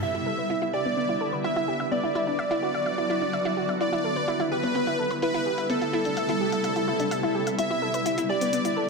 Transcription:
0.03 D3 G3 B3 E4 E5, closed hi-hat
0.15 E4
0.26 A4
0.38 B4, closed hi-hat
0.50 E4, closed hi-hat
0.62 E4, closed hi-hat
0.73 G4 D5
0.85 B3, closed hi-hat
0.97 B3, closed hi-hat
1.09 E4, closed hi-hat
1.21 A4
1.33 B4, closed hi-hat
1.44 E4 E5, closed hi-hat
1.56 E4
1.68 G4
1.80 E5, closed hi-hat
1.92 D3 F#3 B3 F#4 D5, closed hi-hat
2.04 E4
2.15 E4
2.27 D4, closed hi-hat
2.39 E5, closed hi-hat
2.51 E4, closed hi-hat
2.62 F#4
2.74 E5, closed hi-hat
2.86 E5, closed hi-hat
2.98 E4, closed hi-hat
3.10 E4
3.22 D4, closed hi-hat
3.33 E5, closed hi-hat
3.45 E4
3.57 F#4
3.69 E5, closed hi-hat
3.81 G3 E4 D5, closed hi-hat
3.93 E4
4.04 A4
4.16 B4, closed hi-hat
4.28 E4, closed hi-hat
4.40 E4, closed hi-hat
4.51 G4 B4
4.63 B3, closed hi-hat
4.75 B3, closed hi-hat
4.87 E4, closed hi-hat
4.99 A4
5.11 B4, closed hi-hat
5.22 E4 B4, closed hi-hat
5.34 E4
5.46 G4
5.58 E5, closed hi-hat
5.70 C3 B3 A4, closed hi-hat
5.82 E4, closed hi-hat
5.93 E4
6.05 D4, closed hi-hat
6.17 E5, closed hi-hat
6.29 E4, closed hi-hat
6.41 G4
6.52 E5, closed hi-hat
6.64 E5, closed hi-hat
6.76 E4, closed hi-hat
6.88 E4
7.00 D4, closed hi-hat
7.11 E5, closed hi-hat
7.23 E4
7.35 G4
7.47 E5, closed hi-hat
7.58 D3 B3 E4 E5, closed hi-hat
7.70 E4
7.82 A4
7.94 B4, closed hi-hat
8.06 E4, closed hi-hat
8.18 E4, closed hi-hat
8.29 G4 D5
8.41 B3, closed hi-hat
8.53 B3, closed hi-hat
8.65 E4, closed hi-hat
8.77 A4

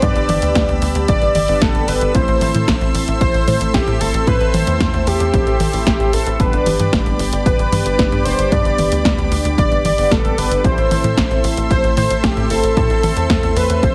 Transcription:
Already playing: G4 D5 B5
0.02 G2 G3 B3 D4 B4 D5 E6, kick, closed hi-hat
0.16 G1, closed hi-hat
0.29 G1, open hi-hat, high tom
0.42 D2, closed hi-hat
0.55 D2, kick, snare, closed hi-hat
0.69 D2, closed hi-hat
0.82 D2, open hi-hat
0.95 D2, closed hi-hat
1.08 G1 D5, kick, closed hi-hat
1.22 G1, closed hi-hat
1.35 G1 D5, open hi-hat, high tom
1.48 G1 G3 B3 D4 B4, open hi-hat
1.61 G1 A4, kick, snare, closed hi-hat
1.75 G1, closed hi-hat
1.88 G1 G3 B3 D4 A4 B4, open hi-hat
2.01 G1, closed hi-hat
2.14 A1 A3 C4 E4 A4 C5 E5 C6, kick, closed hi-hat
2.28 A1, closed hi-hat
2.41 A1, open hi-hat, high tom
2.55 A2, closed hi-hat, high tom
2.68 A1, kick, snare, closed hi-hat
2.81 A1, closed hi-hat
2.94 A1, open hi-hat
3.08 A1, closed hi-hat
3.21 A1 C5, kick, closed hi-hat
3.34 A1, closed hi-hat
3.47 A2 C5, open hi-hat, high tom
3.61 A1, closed hi-hat
3.74 A1 G4, kick, snare, closed hi-hat
3.87 A2, closed hi-hat
4.00 G1 A3 C4 E4 A4 C5, open hi-hat
4.14 A1, closed hi-hat
4.27 A2 A3 C4 E4 B4 C5, kick, closed hi-hat
4.41 A1, closed hi-hat
4.54 A1 C5, open hi-hat, high tom
4.67 E2, closed hi-hat, high tom
4.80 E2, kick, snare, closed hi-hat
4.94 E2, closed hi-hat
5.07 E2 G4, open hi-hat
5.20 E2, closed hi-hat
5.34 A1, kick, closed hi-hat
5.47 A1, closed hi-hat
5.60 A1, open hi-hat, high tom
5.73 A1 A3 C4 E4 C5, open hi-hat
5.87 A1 G4, kick, snare, closed hi-hat
6.00 A1, closed hi-hat
6.13 A1 A3 C4 E4 A4 B4, open hi-hat
6.27 A1, closed hi-hat
6.40 G1 G3 B3 D4 G4 B4 D5 B5 D6, kick, closed hi-hat
6.53 G1, closed hi-hat
6.66 G1, open hi-hat, high tom
6.79 G2, closed hi-hat, high tom
6.93 G1, kick, snare, closed hi-hat
7.06 G1, closed hi-hat
7.19 G1, open hi-hat
7.33 G1, closed hi-hat
7.46 G1 B4, kick, closed hi-hat
7.59 G1, closed hi-hat
7.72 G2 B4, open hi-hat, high tom
7.86 G1, closed hi-hat
7.98 G1 B4, kick, snare, closed hi-hat
8.12 G2, closed hi-hat
8.25 F1 G3 B3 D4 B4 C5, open hi-hat
8.39 G1, closed hi-hat
8.51 G2 G3 B3 D4 B4 D5, kick, closed hi-hat
8.65 G1, closed hi-hat
8.78 G1, open hi-hat, high tom
8.92 D2, closed hi-hat
9.05 D2, kick, snare, closed hi-hat
9.18 D2, closed hi-hat
9.32 D2, open hi-hat
9.45 D2, closed hi-hat
9.58 G1 D5, kick, closed hi-hat
9.71 G1, closed hi-hat
9.85 G1 D5, open hi-hat, high tom
9.98 G1 G3 B3 D4 B4, open hi-hat
10.11 G1 A4, kick, snare, closed hi-hat
10.24 G1, closed hi-hat
10.38 G1 G3 B3 D4 A4 B4, open hi-hat
10.51 G1, closed hi-hat
10.64 A1 A3 C4 E4 A4 C5 E5 C6 E6, kick, closed hi-hat
10.78 A1, closed hi-hat
10.91 A1, open hi-hat, high tom
11.04 A2, closed hi-hat, high tom
11.17 A1, kick, snare, closed hi-hat
11.31 A1, closed hi-hat
11.44 A1, open hi-hat
11.57 A1, closed hi-hat
11.71 A1 C5, kick, closed hi-hat
11.84 A1, closed hi-hat
11.97 A2 C5, open hi-hat, high tom
12.10 A1, closed hi-hat
12.24 A1 G4, kick, snare, closed hi-hat
12.37 A2, closed hi-hat
12.50 G1 A3 C4 E4 A4 C5, open hi-hat
12.64 A1, closed hi-hat
12.77 A2 A3 C4 E4 C5, kick, closed hi-hat
12.90 A1, closed hi-hat
13.03 A1, open hi-hat, high tom
13.16 E2, closed hi-hat
13.30 E2, kick, snare, closed hi-hat
13.43 E2, closed hi-hat
13.56 E2 B4, open hi-hat
13.70 E2, closed hi-hat
13.83 A1 C5, kick, closed hi-hat

